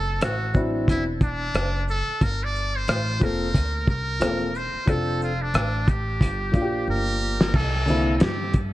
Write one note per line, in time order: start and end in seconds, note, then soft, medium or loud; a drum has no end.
0.00 0.18 F#1 loud
0.00 0.22 A4 medium
0.21 0.85 A1 medium
0.21 0.60 F#4 medium
0.21 cross-stick loud
0.21 closed hi-hat medium
0.53 1.02 F#3 medium
0.53 1.03 C4 medium
0.53 1.03 D4 medium
0.53 1.04 E4 medium
0.53 kick medium
0.53 shaker medium
0.88 1.51 E1 medium
0.88 1.05 E4 medium
0.88 kick medium
0.88 closed hi-hat medium
1.21 1.85 D4 medium
1.21 kick medium
1.21 closed hi-hat soft
1.21 shaker soft
1.54 2.04 F#1 medium
1.54 cross-stick loud
1.54 closed hi-hat medium
1.88 2.25 A4 loud
1.88 shaker soft
2.08 muted upright bass stroke soft
2.21 2.85 G1 medium
2.21 2.45 A#4 medium
2.21 kick loud
2.21 closed hi-hat medium
2.44 2.78 D5 medium
2.55 shaker medium
2.76 3.25 C5 loud
2.88 3.20 A1 medium
2.88 cross-stick loud
2.88 closed hi-hat medium
3.20 3.53 F1 medium
3.20 3.45 F3 medium
3.20 3.46 A#3 medium
3.20 3.46 C4 medium
3.20 3.47 A4 medium
3.20 3.89 A#4 loud
3.20 kick medium
3.20 closed hi-hat medium
3.20 shaker soft
3.55 3.86 D2 medium
3.55 kick medium
3.55 closed hi-hat medium
3.88 4.19 C2 medium
3.88 4.58 A#4 loud
3.88 kick medium
3.88 shaker soft
4.20 4.71 E1 medium
4.20 4.45 F3 medium
4.20 4.46 A#3 medium
4.20 4.46 C4 medium
4.20 4.47 A4 medium
4.20 cross-stick loud
4.20 closed hi-hat medium
4.55 4.91 C5 medium
4.55 shaker soft
4.74 muted upright bass stroke soft
4.86 5.51 F1 medium
4.86 5.28 F3 medium
4.86 5.28 C4 medium
4.86 5.29 D4 medium
4.86 5.22 A4 medium
4.86 5.30 A4 medium
4.86 kick loud
4.86 closed hi-hat medium
5.22 5.43 F4 medium
5.22 shaker medium
5.42 5.91 D4 medium
5.54 6.18 A1 medium
5.54 cross-stick loud
5.54 closed hi-hat medium
5.88 6.89 G4 medium
5.88 kick medium
5.88 closed hi-hat medium
5.88 shaker soft
6.21 6.53 G1 loud
6.21 kick medium
6.21 closed hi-hat medium
6.52 7.47 F3 medium
6.52 7.48 A#3 medium
6.52 7.49 D4 medium
6.52 6.62 F4 medium
6.52 kick loud
6.52 closed hi-hat soft
6.52 shaker soft
6.62 7.52 G4 medium
6.88 7.51 G1 medium
6.88 7.57 A#4 loud
7.41 snare medium
7.54 8.18 C2 medium
7.54 8.16 A4 loud
7.54 kick loud
7.54 crash medium
7.86 8.12 D3 medium
7.86 8.12 A#3 medium
7.86 8.13 C4 medium
7.86 8.14 E4 medium
7.86 shaker medium
8.17 8.23 A4 medium
8.17 snare loud
8.17 closed hi-hat medium
8.22 8.73 G2 medium
8.22 8.58 G4 medium
8.54 kick loud
8.54 closed hi-hat medium
8.54 shaker medium